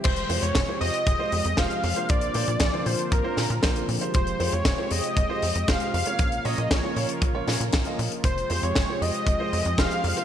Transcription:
0.04 analog synth bass F1, analog synth pad C3 F3 G#3 G4, analog synth lead C5, kick, closed hi-hat, crash
0.16 closed hi-hat
0.30 analog synth bass F2, grand piano G#3 F4 G4 C5, open hi-hat
0.42 analog synth bass F2, analog synth lead C#5, closed hi-hat
0.55 analog synth bass F1, kick, snare, closed hi-hat
0.68 grand piano G#3 F4 G4 C5
0.81 analog synth bass F2, analog synth lead D#5, open hi-hat
0.94 closed hi-hat
1.07 analog synth bass F1, kick, closed hi-hat
1.19 grand piano G#3 F4 G4 C5
1.32 analog synth bass F2, open hi-hat
1.45 analog synth bass F2, closed hi-hat
1.57 analog synth bass F1, grand piano G#3 F4 G4 C5, analog synth lead F5, kick, snare, closed hi-hat
1.71 closed hi-hat
1.84 analog synth bass F2, open hi-hat
1.96 grand piano A#3 D4 F4 C5, closed hi-hat
2.09 analog synth bass A#1, analog synth pad D3 A#3 F4, analog synth lead D5, kick, closed hi-hat
2.21 closed hi-hat
2.34 analog synth bass A#2, grand piano A#3 D4 F4 C5, open hi-hat
2.48 analog synth bass A#2, closed hi-hat
2.60 analog synth bass A#1, kick, snare, closed hi-hat
2.73 grand piano A#3 D4 F4 C5
2.86 analog synth bass A#2, analog synth lead C5, open hi-hat
2.99 closed hi-hat
3.12 analog synth bass A#1, analog synth lead A#4, kick, closed hi-hat
3.24 grand piano A#3 D4 F4 C5
3.37 analog synth bass A#2, snare, open hi-hat
3.50 analog synth bass A#2, closed hi-hat
3.63 analog synth bass A#1, grand piano A#3 D4 F4 C5, kick, snare, closed hi-hat
3.76 closed hi-hat
3.89 analog synth bass A#2, open hi-hat
4.01 grand piano G#3 F4 G4 C5, closed hi-hat
4.14 analog synth bass F1, analog synth pad G#3 G4, analog synth lead C5, kick, closed hi-hat
4.27 closed hi-hat
4.40 analog synth bass F2, grand piano G#3 F4 G4 C5, open hi-hat
4.52 analog synth bass F2, analog synth lead C#5, closed hi-hat
4.65 analog synth bass F1, kick, snare, closed hi-hat
4.78 grand piano G#3 F4 G4 C5
4.91 analog synth bass F2, analog synth lead D#5, open hi-hat
5.04 closed hi-hat
5.17 analog synth bass F1, kick, closed hi-hat
5.29 grand piano G#3 F4 G4 C5
5.42 analog synth bass F2, open hi-hat
5.55 analog synth bass F2, closed hi-hat
5.68 analog synth bass F1, grand piano G#3 F4 G4 C5, analog synth lead F5, kick, snare, closed hi-hat
5.80 closed hi-hat
5.94 analog synth bass F2, analog synth lead F5, open hi-hat
6.06 grand piano A#3 C#4 F4 C#5, closed hi-hat
6.19 analog synth bass A#1, analog synth pad C#3 F3 A#3 F4 A#4, kick, closed hi-hat
6.32 closed hi-hat
6.45 analog synth bass A#2, grand piano A#3 C#4 F4 C#5, analog synth lead D#5, open hi-hat
6.58 analog synth bass A#2, closed hi-hat
6.71 analog synth bass A#1, analog synth lead C#5, kick, snare, closed hi-hat
6.83 grand piano A#3 C#4 F4 C#5
6.96 analog synth bass A#2, open hi-hat
7.09 closed hi-hat
7.22 analog synth bass A#1, kick, closed hi-hat
7.35 grand piano A#3 C#4 F4 C#5
7.48 analog synth bass A#2, grand piano A#3 C#4 F4 C#5, snare, open hi-hat
7.60 analog synth bass A#2, closed hi-hat
7.73 analog synth bass A#1, kick, snare, closed hi-hat
7.85 grand piano A#3 C#4 F4 D#5, closed hi-hat
7.99 analog synth bass A#2, open hi-hat
8.12 closed hi-hat
8.24 analog synth bass F1, analog synth pad C3 G#3 G4, analog synth lead C5, kick, closed hi-hat
8.38 closed hi-hat
8.50 analog synth bass F2, grand piano G#3 F4 G4 C5, open hi-hat
8.63 analog synth bass F2, analog synth lead C#5, closed hi-hat
8.75 analog synth bass F1, kick, snare, closed hi-hat
8.89 grand piano G#3 F4 G4 C5
9.02 analog synth bass F2, analog synth lead D#5, open hi-hat
9.15 closed hi-hat
9.27 analog synth bass F1, kick, closed hi-hat
9.40 grand piano G#3 F4 G4 C5
9.53 analog synth bass F2, open hi-hat
9.65 analog synth bass F2, closed hi-hat
9.78 analog synth bass F1, grand piano G#3 F4 G4 C5, analog synth lead F5, kick, snare, closed hi-hat
9.91 closed hi-hat
10.04 analog synth bass F2, open hi-hat
10.17 grand piano A#3 D4 F4 C5, closed hi-hat

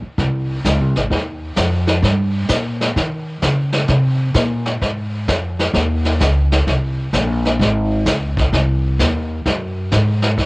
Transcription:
0.02 muted upright bass stroke
0.18 upright bass C2, brush sweep, kick, snare
0.64 upright bass C#2, kick, snare, hi-hat pedal
0.80 upright bass C2
0.95 upright bass G#1, snare
1.10 upright bass D#2, brush sweep, kick, snare
1.56 upright bass F2, kick, snare, hi-hat pedal
1.87 snare
2.02 upright bass G2, brush sweep, kick, snare
2.48 upright bass A#2, kick, snare, hi-hat pedal
2.81 snare
2.96 upright bass D#3, brush sweep, kick, snare
3.42 upright bass C#3, kick, snare, hi-hat pedal
3.72 snare
3.88 upright bass C3, brush sweep, kick, snare
4.34 upright bass A#2, kick, snare, hi-hat pedal
4.66 snare
4.82 upright bass G#2, brush sweep, kick, snare
5.28 upright bass F2, kick, snare, hi-hat pedal
5.59 snare
5.74 upright bass D#2, brush sweep, kick, snare
6.05 snare
6.20 upright bass C#2, kick, snare, hi-hat pedal
6.52 snare
6.67 upright bass C2, brush sweep, kick, snare
7.13 upright bass A#1, kick, snare, hi-hat pedal
7.45 snare
7.59 upright bass G#1, brush sweep, kick, snare
8.06 upright bass C#2, kick, snare, hi-hat pedal
8.37 kick, snare
8.53 upright bass C2, brush sweep, kick, snare
8.99 upright bass D#2, kick, snare, hi-hat pedal
9.46 upright bass F#2, brush sweep, kick, snare
9.91 upright bass G#2, kick, snare, hi-hat pedal
10.22 snare
10.38 upright bass D#2, brush sweep, kick, snare

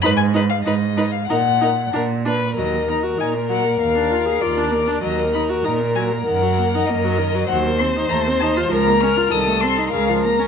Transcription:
0.02 cello G#2, viola D#4, violin B4 B5
0.17 violin G#5
0.34 viola D#4, violin B4
0.49 violin F5
0.63 cello G#2, viola D#4, violin B4 D#5
0.97 viola D#4, violin B4
1.11 violin F5
1.27 cello A#2, viola D#4, violin A#4 F#5
1.61 viola D#4, violin A#4
1.93 cello A#2, viola D4, violin A#4
2.25 viola D4, violin B4
2.57 cello D#2, viola F#3, violin A#4 D#5
2.73 viola A#3
2.88 viola D#4, violin A#5
3.03 viola F#4
3.18 cello A#2, viola D#4, violin G#5
3.34 viola A#3
3.50 viola F#3, violin F#5
3.64 viola A#3
3.80 cello D#2, viola A#3, violin F5
3.96 viola D4
4.11 viola F4
4.26 viola G#4
4.41 cello D#2, viola F4, violin D5
4.57 viola D4
4.72 viola A#3
4.88 viola D4
5.02 cello D#2, viola F#3, violin A#4 D#5
5.18 viola A#3
5.33 viola D#4, violin B5
5.49 viola F#4
5.64 cello A#2, viola D#4, violin A#5
5.80 viola A#3
5.95 viola F#3, violin G#5
6.11 viola A#3
6.26 cello F#2, viola D#3, violin F#5
6.43 viola F#3
6.58 viola A#3
6.75 viola D#4
6.87 cello F#2, viola A#3, violin D#5
7.04 viola F#3
7.18 viola D#3
7.34 viola F#3
7.48 cello D#2, viola F#3, violin C5 F#5
7.66 viola A#3
7.78 viola C4, violin C6
7.96 viola D#4
8.09 cello D#2, viola A3, violin A#5
8.27 viola C4
8.40 viola D#4, violin A5
8.57 viola F4
8.70 cello C#2, viola F3, violin A#4 A#5
8.87 viola A#3
9.01 viola C#4, violin F6
9.17 viola F4
9.31 cello C2, viola D#3, violin A4 D#6
9.48 viola A3
9.61 viola C4, violin C6
9.78 viola D#4
9.91 cello C#2, viola C#3, violin A#4 F5
10.09 viola F3
10.24 viola A#3, violin A#5
10.39 viola C#4

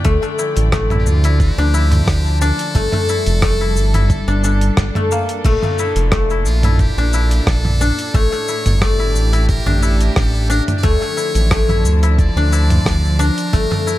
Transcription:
Already playing: string section A3 D5 G5, guzheng D4 E4
0.05 analog synth bass D2, string section D3, guzheng A3, kick, closed hi-hat, shaker
0.22 guzheng A3, shaker
0.35 string section F3, guzheng E4, shaker
0.57 analog synth bass A1, closed hi-hat, shaker
0.72 guzheng A3, kick, cross-stick, closed hi-hat, shaker
0.90 guzheng E4, mid tom, shaker
0.99 muted trumpet G4
1.06 analog synth bass D2, muted trumpet F4, shaker
1.24 guzheng E4, string section A5, closed hi-hat, shaker
1.40 muted trumpet G4, kick, closed hi-hat, shaker
1.58 analog synth bass D2, guzheng D4, shaker
1.74 guzheng E4, shaker
1.92 closed hi-hat, mid tom, shaker
2.07 analog synth bass D2, kick, cross-stick, closed hi-hat, shaker
2.26 shaker
2.41 guzheng D4, muted trumpet A4, shaker
2.59 closed hi-hat, shaker
2.75 analog synth bass G1, string section G3, guzheng A3, kick, closed hi-hat, shaker
2.84 string section D4 A4
2.92 guzheng A3, mid tom, shaker
3.09 guzheng E4, shaker
3.26 analog synth bass F1, closed hi-hat, shaker
3.42 guzheng A3, kick, cross-stick, closed hi-hat, shaker
3.61 guzheng E4, shaker
3.76 analog synth bass G1, shaker
3.94 guzheng E4, closed hi-hat, mid tom, shaker
4.10 kick, closed hi-hat, shaker
4.28 analog synth bass G1, guzheng D4, shaker
4.44 guzheng D4, shaker
4.61 closed hi-hat, shaker
4.77 analog synth bass G1, kick, cross-stick, closed hi-hat, shaker
4.95 guzheng A3, mid tom, shaker
5.11 guzheng A#3, shaker
5.29 closed hi-hat, shaker
5.45 analog synth bass A#1, string section A#2, guzheng A3, kick, closed hi-hat, crash, shaker
5.63 guzheng A3, mid tom, shaker
5.79 guzheng E4, shaker
5.96 analog synth bass F1, closed hi-hat, shaker
6.12 guzheng A3, kick, cross-stick, closed hi-hat, shaker
6.30 guzheng E4, shaker
6.45 analog synth bass A#1, muted trumpet F4, shaker
6.63 guzheng E4, closed hi-hat, mid tom, shaker
6.79 muted trumpet G4, kick, closed hi-hat, shaker
6.97 analog synth bass A#1, guzheng D4, shaker
7.13 guzheng E4, shaker
7.31 closed hi-hat, shaker
7.47 analog synth bass A#1, muted trumpet A4, kick, cross-stick, closed hi-hat, shaker
7.65 mid tom, shaker
7.81 guzheng D4, shaker
7.99 closed hi-hat, shaker
8.14 analog synth bass A1, string section A2, guzheng A3, muted trumpet C#5, kick, closed hi-hat, shaker
8.32 guzheng A3, shaker
8.41 string section A3
8.48 guzheng E4, shaker
8.66 analog synth bass G1, closed hi-hat, mid tom, shaker
8.81 guzheng A3, muted trumpet D5, kick, cross-stick, closed hi-hat, shaker
8.86 string section G4 E5
8.99 guzheng E4, shaker
9.15 analog synth bass A1, shaker
9.33 guzheng E4, closed hi-hat, shaker
9.49 muted trumpet A#4, kick, closed hi-hat, shaker
9.66 analog synth bass A1, guzheng D4, mid tom, shaker
9.82 guzheng E4, muted trumpet A4, shaker
10.01 muted trumpet A#4, closed hi-hat, shaker
10.16 analog synth bass A1, muted trumpet A4, kick, cross-stick, closed hi-hat, shaker
10.35 shaker
10.50 guzheng D4, muted trumpet A#4, shaker
10.68 closed hi-hat, mid tom, shaker
10.77 muted trumpet D5
10.83 analog synth bass D2, string section D3, guzheng A3, muted trumpet C#5, kick, closed hi-hat, shaker
11.02 guzheng A3, shaker
11.08 string section F3
11.17 guzheng E4, shaker
11.35 analog synth bass A1, closed hi-hat, shaker
11.51 guzheng A3, kick, cross-stick, closed hi-hat, shaker
11.69 guzheng E4, mid tom, shaker
11.74 string section A5
11.84 analog synth bass D2, shaker
12.03 guzheng E4, closed hi-hat, shaker
12.19 muted trumpet D5, kick, closed hi-hat, shaker
12.36 analog synth bass D2, guzheng D4, shaker
12.52 guzheng E4, shaker
12.70 closed hi-hat, mid tom, shaker
12.86 analog synth bass D2, kick, cross-stick, closed hi-hat, shaker
13.05 shaker
13.19 guzheng D4, muted trumpet A#4, shaker
13.38 closed hi-hat, shaker
13.53 analog synth bass G1, string section G3, guzheng A3, kick, closed hi-hat, shaker
13.71 guzheng A3, mid tom, shaker
13.87 guzheng E4, shaker

